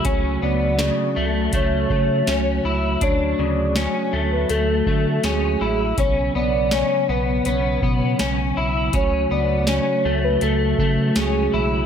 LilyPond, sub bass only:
\new Staff \with { instrumentName = "Sub bass" } { \clef bass \time 4/4 \key fis \minor \tempo 4 = 81 cis,8 cis,8. r16 cis,8 cis,8 cis8 cis,8 cis,8 | d,8 d,8. r16 d,8 d,8 d8 d,8 a,,8 | b,,8 b,,8. r16 b,,8 b,,8 b,8 b,,8 b,,8 | cis,8 cis,8. r16 cis,8 cis,8 cis8 cis,8 b,,8 | }